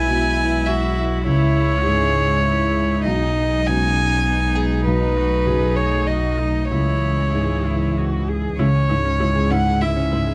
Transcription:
Already playing: B1 G#3 E4 B4 G#5
0.08 B2
0.66 F#4 E5
1.26 C#2 E4 G#4 C#5
1.86 G#2 G#4
2.47 E4
3.05 B1 D#4 D#5
3.37 D#4
3.66 B2 C#4 G#5
4.28 B3
4.55 G#4
4.85 B1 F#3 A3 D#4 B4
5.17 F#4
5.46 F#2 G#4
5.77 C#5
6.08 F#4 D#5
6.40 D#4
6.71 C#2 E3 E4 G#4 C#5
7.34 G#2 G#4
7.67 E4
7.98 F#4
8.29 G#4
8.59 C#2 G#3 C#4 E4 G#4 C#5
8.75 G#4
8.90 G#2 G#3 E4
9.05 C#4
9.20 G#3 E4 C#5
9.35 G#4
9.51 G#2 G#3 C#4 E4 F#5
9.66 G#4
9.81 G#3 E4 E5
9.96 C#4
10.12 G#2 G#3 E4
10.27 G#4

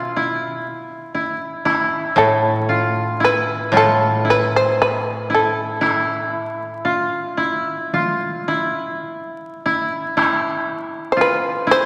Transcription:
Already playing: B2 E4 F4
0.16 E4
1.14 E4
1.65 E4, taiko rim
2.16 A2 A4
2.69 F4
2.85 F4
3.20 E4
3.24 B4
3.72 A2 F4, taiko high
3.77 A4
4.25 E4
4.30 B4
4.56 C5
4.82 B4
5.30 E4
5.35 A4
5.81 E4, taiko rim
6.85 F4
7.37 E4
7.94 F4, taiko high
8.48 E4
9.66 E4
10.17 E4, taiko rim
11.12 C5
11.17 F4
11.21 B4
11.67 E4
11.71 C5

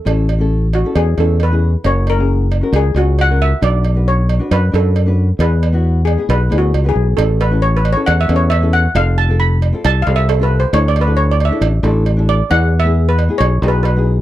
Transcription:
0.05 A1 C#4 E4 A4, cowbell
0.29 cowbell
0.38 C#4 E4 A4
0.73 F#4, cowbell
0.84 C#4 E4 A4
0.95 E2 G#4, cowbell
1.17 E2 C#4 E4 A4, cowbell
1.40 B4, cowbell
1.51 C#4 E4 G#4
1.84 F#1 C#4 F#4 A#4 C#5, cowbell
2.07 A#4, cowbell
2.18 C#4 F#4 G#4
2.52 cowbell
2.61 C#4 F#4 A#4
2.72 C#2 G#4, cowbell
2.94 C#2 C#4 F#4 C#5, cowbell
3.19 F#5, cowbell
3.29 C#4 F#4 A#4
3.42 E5
3.61 B1 D4 F#4 B4 D5, cowbell
3.85 cowbell
3.95 D4 F#4 B4
4.08 C#5
4.29 cowbell
4.39 D4 F#4 B4
4.51 F#2 B4, cowbell
4.72 F#2 D4 F#4 A4 B4, cowbell
4.96 cowbell
5.06 D4 F#4 B4
5.39 E2 B3 E4 G#4 B4, cowbell
5.63 cowbell
5.72 B3 E4 F#4
6.05 G#4, cowbell
6.17 B3 E4 G#4
6.29 B1 B4, cowbell
6.50 D2 B3 E4 G#4, cowbell
6.58 F#4
6.74 C#2, cowbell
6.84 B3 E4 B4
6.89 G#4
6.96 B1
7.17 A1 C#4 E4 A4, cowbell
7.41 B4, cowbell
7.51 C#4 E4 A4
7.62 C#5
7.77 B4
7.85 cowbell
7.93 C#4 E4 C#5
7.97 A4
8.06 E2 F#5, cowbell
8.21 E5
8.28 E2 C#4 E4 A4, cowbell
8.36 C#5
8.50 E5, cowbell
8.61 C#4 E4 A4
8.73 F#5
8.94 F1 C4 F4 A4 F5, cowbell
9.18 A5
9.29 C4 F4 A4
9.40 B5
9.62 cowbell
9.73 C4 F4 A4
9.85 C2 A5, cowbell
10.02 C4 F5
10.06 C2 F4 A4, cowbell
10.16 E5
10.29 A4, cowbell
10.40 C4 F4 A4 B4
10.60 C5
10.73 D2 D4 E4 A4 C#5, cowbell
10.88 D5
10.96 cowbell
11.01 B4
11.06 D4 E4 A4
11.17 C#5
11.31 D5
11.40 cowbell
11.45 E5
11.50 D4 E4 A4
11.61 A1, cowbell
11.83 A1 D4 E4 A4, cowbell
12.06 cowbell
12.17 D4 E4 A4
12.29 D5
12.49 E2 B3 E4 G#4 F#5, cowbell
12.80 E5
12.84 B3 E4 G#4
13.09 B4
13.19 cowbell
13.28 B3 E4 G#4
13.38 B1 C#5, cowbell
13.62 B1 B3 E4 G#4, cowbell
13.68 B4
13.83 B4, cowbell
13.96 B3 E4 G#4

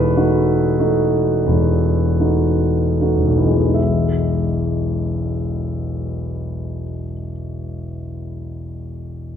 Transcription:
Already playing: E1 E2 A3 D#4 F#4 A4 B4
0.17 A3 D#4 F#4
0.79 A3 D#4 F#4
1.47 E1 E2
2.20 A3 D#4 F#4
3.01 A3 D#4 F#4
3.17 E1
3.27 B1
3.37 E3
3.46 G#3
3.57 B3
3.66 E4
3.74 E5

